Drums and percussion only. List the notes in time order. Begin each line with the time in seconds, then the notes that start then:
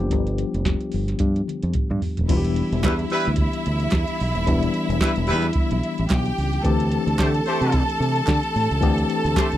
0.11 kick, closed hi-hat
0.27 closed hi-hat
0.38 closed hi-hat
0.54 closed hi-hat
0.65 kick, snare, closed hi-hat
0.81 closed hi-hat
0.92 open hi-hat
1.08 snare, closed hi-hat
1.19 kick, closed hi-hat, high tom
1.36 closed hi-hat
1.48 closed hi-hat, mid tom
1.63 closed hi-hat
1.73 kick, closed hi-hat, mid tom
1.90 mid tom
2.02 floor tom, open hi-hat
2.17 closed hi-hat, floor tom
2.29 kick, closed hi-hat, crash
2.44 closed hi-hat
2.56 closed hi-hat
2.72 closed hi-hat
2.83 kick, snare, clap, closed hi-hat
2.99 closed hi-hat
3.10 open hi-hat
3.25 snare, closed hi-hat
3.36 kick, closed hi-hat
3.53 closed hi-hat
3.66 closed hi-hat
3.80 closed hi-hat
3.90 kick, snare, clap, closed hi-hat
4.08 closed hi-hat
4.20 open hi-hat
4.35 closed hi-hat
4.47 kick, closed hi-hat
4.63 closed hi-hat
4.74 closed hi-hat
4.90 closed hi-hat
5.01 kick, snare, clap, closed hi-hat
5.16 closed hi-hat
5.27 open hi-hat
5.42 snare, closed hi-hat
5.53 kick, closed hi-hat
5.71 closed hi-hat
5.83 closed hi-hat
5.98 closed hi-hat
6.09 kick, snare, clap, closed hi-hat
6.25 closed hi-hat
6.38 open hi-hat
6.53 closed hi-hat
6.65 kick, closed hi-hat
6.80 closed hi-hat
6.92 closed hi-hat
7.08 closed hi-hat
7.19 kick, snare, clap, closed hi-hat
7.34 closed hi-hat
7.46 open hi-hat
7.62 snare, closed hi-hat
7.72 kick, closed hi-hat
7.90 closed hi-hat
8.02 closed hi-hat
8.16 closed hi-hat
8.27 kick, snare, clap, closed hi-hat
8.43 closed hi-hat
8.56 open hi-hat
8.71 closed hi-hat
8.82 kick, closed hi-hat
8.98 closed hi-hat
9.10 closed hi-hat
9.26 closed hi-hat
9.36 kick, snare, clap, closed hi-hat
9.52 closed hi-hat